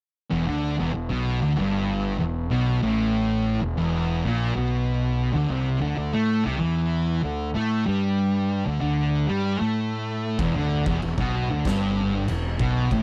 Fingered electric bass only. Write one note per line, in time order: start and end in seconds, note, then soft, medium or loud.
0.32 0.46 E1 medium
0.48 0.77 D2 medium
0.80 0.94 E1 loud
0.95 1.09 E1 medium
1.11 1.40 B1 loud
1.43 1.57 D2 loud
1.58 2.17 G1 medium
2.21 2.50 E1 medium
2.52 2.81 B1 loud
2.83 3.58 A1 medium
3.61 3.76 E1 medium
3.78 4.21 E1 medium
4.25 4.54 A#1 loud
4.56 5.31 B1 loud
5.35 5.49 D2 medium
5.50 5.79 C2 loud
5.82 5.97 D2 loud
5.98 6.12 D2 medium
6.14 6.43 A2 loud
6.46 6.60 C2 loud
6.62 7.20 E2 medium
7.24 7.53 D2 medium
7.56 7.85 A2 loud
7.88 8.62 G2 loud
8.67 8.81 D2 medium
8.83 9.26 D2 medium
9.30 9.59 G2 medium
9.61 10.36 A2 medium
10.39 10.54 E1 medium
10.56 10.85 D2 loud
10.87 11.01 E1 loud
11.03 11.17 E1 medium
11.18 11.47 B1 loud
11.51 11.65 D2 medium
11.65 12.24 G1 loud
12.30 12.59 E1 medium
12.59 12.89 B1 loud
12.92 13.03 A1 medium